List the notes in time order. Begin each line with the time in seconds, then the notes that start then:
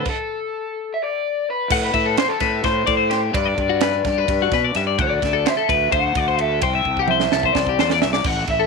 0.05 A4, kick, crash
0.94 E5
1.03 D5
1.50 B4
1.70 A2 F#5, kick, crash
1.84 B4
1.94 A2 E5, kick, ride
2.06 A4
2.17 C5, snare, ride
2.29 A4
2.40 A2 B4, kick, snare, ride
2.64 A2 C5, kick, snare, ride
2.87 A2 D5, kick, ride
2.97 C5
3.10 G4 C5, snare, ride
3.34 G2 B4 D5, kick, ride
3.45 D5
3.58 G2, kick, ride
3.69 F#4
3.81 B4, snare, ride
4.05 G2 G4, kick, snare, ride
4.18 B4
4.28 G2, kick, ride
4.42 F#4
4.51 B2 B4, kick, snare, ride
4.64 D5
4.75 G2 E5, snare, ride
4.87 D5
4.98 D2 D5 F#5, kick, ride
5.22 D2 E5, kick, snare, ride
5.33 A4
5.46 C5 E5, snare, ride
5.57 A4
5.69 D2 B4, kick, ride
5.92 D2 C5 F#5, kick, ride
6.15 D2 D5, kick, ride
6.28 C5
6.39 A4 E5, ride
6.62 C2 C5 G5, kick, ride
6.75 E5
6.85 C2, kick
6.97 G4, kick
7.02 F#5
7.08 C5 E5, high tom
7.20 snare
7.32 C2 A4, snare
7.43 C5, kick
7.53 C2 D5, kick, snare
7.67 G4, kick
7.79 E2 C5, snare
7.90 D5, snare
8.02 C2 E5, snare
8.13 D5, snare
8.24 A1 F#5, kick, crash
8.47 A1 E5, kick, ride
8.60 A4